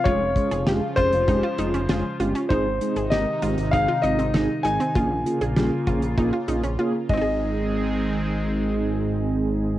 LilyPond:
<<
  \new Staff \with { instrumentName = "Grand piano" } { \time 4/4 \key aes \major \tempo 4 = 98 des''4 r8 c''2 r8 | c''4 ees''4 f''8 ees''4 aes''8~ | aes''2.~ aes''8 ees''8~ | ees''1 | }
  \new Staff \with { instrumentName = "Synth arpeggio sound" } { \time 4/4 \key aes \major f'8 r16 aes'16 g'8 f'8 ees'16 f'16 ees'16 des'16 f'8 f'16 des'16 | ees'8 r16 aes'16 g'8 f'8 ees'16 f'16 ees'16 c'16 ees'8 ees'16 c'16 | f'8 r16 aes'16 g8 f'8 ees'16 f'16 ees'16 des'16 f'8 <aes c' ees' aes'>8~ | <aes c' ees' aes'>1 | }
  \new Staff \with { instrumentName = "Analog polysynth" } { \time 4/4 \key aes \major <aes des' f' aes'>16 r16 <aes des' f' aes'>16 r16 <aes des' f' aes'>16 r16 <aes des' f' aes'>16 r16 <aes des' f' g'>16 r16 <aes des' f' aes'>16 r16 <aes des' f' aes'>16 r16 <aes des' f' g'>16 r16 | <aes c' ees' aes'>16 r16 <aes c' ees' aes'>16 r16 <aes c' ees' bes'>16 r16 <aes c' ees' g'>16 r16 <aes c' ees' aes'>16 r16 <aes c' ees' f'>16 r16 <aes c' ees' aes'>16 r16 <aes c' ees' aes'>16 r16 | <bes des' f' aes'>16 r16 <bes des' f' aes'>16 r16 <bes des' f' aes'>16 r16 <bes des' f' aes'>16 r16 <bes des' f' aes'>16 r16 <bes des' f' aes'>16 r16 <bes des' f' aes'>16 r16 <aes c' ees' aes'>8~ | <aes c' ees' aes'>1 | }
  \new Staff \with { instrumentName = "Analog synth pad" } { \clef bass \time 4/4 \key aes \major <des f f'>1 | <c ees ees'>1 | <des bes f'>2.~ <des bes f'>8 <ees aes c' aes'>8~ | <ees aes c' aes'>1 | }
  \new Staff \with { instrumentName = "Analog synth bass" } { \clef bass \time 4/4 \key aes \major f,,16 f,,16 r16 f,,16 f,,16 r16 f,,16 f,,16 f,,16 r16 f,,16 f,,16 f,,16 r16 g,,16 r16 | aes,,16 aes,,16 r16 aes,,16 aes,,16 r16 aes,,16 aes,,16 aes,,16 r16 aes,,16 aes,,16 aes,,16 r16 aes,,16 r16 | bes,,16 bes,,16 r16 bes,,16 bes,,16 r16 bes,,16 bes,,16 bes,,16 r16 bes,,16 bes,,16 r8 aes,,8~ | aes,,1 | }
  \new DrumStaff \with { instrumentName = "Drums" } \drummode { \time 4/4 <hh bd>8 <hh bd>16 hh16 <hh sn>8 <hh bd>16 hh16 <hh bd>8 hh16 hh16 <hh sn>8 hh16 hh16 | <hh bd>8 hh16 hh16 <hh sn>8 hh16 hh16 <hh bd>8 hh16 hh16 <hh sn>8 hh16 hh16 | <hh bd>8 hh16 hh16 <hh sn>8 <hh bd>16 hh16 <hh bd>8 hh16 hh16 r8 <bd cymr>8 | r4 r4 r4 r4 | }
>>